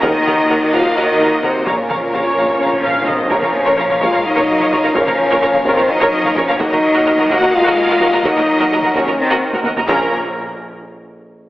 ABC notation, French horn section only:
X:1
M:7/8
L:1/8
Q:1/4=128
K:Bbm
V:1 name="French horn section"
E3 F E2 C | B,4 D2 C | D3 F E3 | D3 C E2 D |
E3 G F3 | E3 D C z2 | B, z6 |]